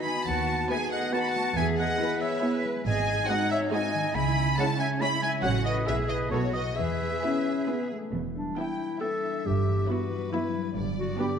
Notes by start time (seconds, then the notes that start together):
Already playing: D#3 B3 D#4 F#4 B4
0.04 B3 G#5 B5
0.26 D#2 D#3 B3 F#4 F#5 A5
0.50 B3
0.69 A3 B3 F#4 G#4 B4 E5 G#5
0.92 F#4 D#5 F#5
1.13 B3 F#4 B4 F#5 A5
1.22 B5
1.29 A5
1.35 A3
1.56 E2 E3 G#4 E5 G#5
1.79 B3 D#5 F#5
2.00 B3 E4 G#4 B4
2.21 B3 C#5 E5
2.42 B3 E4 G#4 B4
2.65 G#3
2.86 G#1 G#2 G#4 D#5 G#5
3.07 G#3
3.28 G#3 C4 D#4 F#4 C5 D#5 F#5
3.50 F#4 C#5 E5
3.72 G#3 C4 D#4 F#4 C5 D#5 G#5
3.94 D#3
4.15 C#2 C#3 E4 G#5 B5
4.37 C#4
4.58 G#3 C#4 E4 C#5 F#5 A5
4.80 G#4 E5 G#5
5.01 G#3 C#4 E4 C#5 G#5 B5
5.22 G#3 E5 G#5
5.42 A1 A2 F#3 C#4 F#4 C#5 F#5
5.65 C#4 F#4 B4 D#5
5.87 B1 B2 B3 E4 G#4 B4 E5
6.09 B3 B4 D#5
6.31 B1 B2 B3 F#4 A4 B4 C#5
6.53 B3 B4 D#5
6.76 E2 E3 G#4 B4 E5
7.00 B3
7.23 B3 C#4 E4 G#4 B4
7.46 G#4
7.68 B3 E4 G#4 B4
7.91 G#3 A3
8.14 E1 E2 E3
8.36 G3 D4
8.57 B3 E4 B4 E5 G5
8.80 E4
9.01 B3 D4 E4 A4 E5 G5
9.24 E4
9.45 G1 G2 G4
9.67 E3
9.89 B3 E4 F#4 B4 E5 B5
10.11 G3
10.31 F#3 B3 E4 E5 B5
10.54 G3
10.76 G1 G2 D5
10.98 D3 F#4
11.19 B3 D4 G4 G5 B5